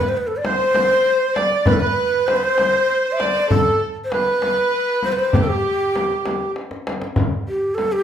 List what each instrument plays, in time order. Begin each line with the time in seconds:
Already playing: ney B4
0.09 ney C5
0.17 ney B4
0.27 ney A4
0.37 ney D5
0.44 violin section C5, melodica C5, ney C5, tombak tek, frame drum
0.75 tombak tek, frame drum
1.04 melodica C5
1.35 violin section D5, melodica D5, ney D5, tombak tek, frame drum
1.66 ney B4, melodica B4, violin section B4, tombak dum, frame drum
1.73 ney A4
1.79 violin section B4, ney B4, melodica B4
2.27 ney C5, melodica C5, tombak tek, frame drum
2.36 ney B4, violin section C5
2.44 melodica C5, ney C5
2.58 tombak tek, frame drum
3.05 melodica C5
3.12 ney E5
3.19 violin section D5, ney D5, tombak tek, frame drum
3.49 ney A4, violin section A4, melodica A4, tombak dum, frame drum
4.04 ney C5
4.11 violin section B4, ney B4, melodica B4, tombak tek, frame drum
4.42 tombak tek, frame drum
5.03 ney C5, melodica C5, frame drum
5.12 ney B4
5.17 melodica C5, ney C5
5.32 melodica G4, violin section G4, ney G4, tombak dum, frame drum
5.40 melodica A4
5.47 melodica G4
5.65 tombak ka
5.96 tombak tek, frame drum
6.26 tombak tek, frame drum
6.56 tombak tek
6.71 tombak ka
6.87 tombak tek, frame drum
7.01 tombak ka
7.16 tombak dum, frame drum
7.48 ney G4, tombak ka
7.75 ney A4, tombak tek
7.79 frame drum
7.92 ney G4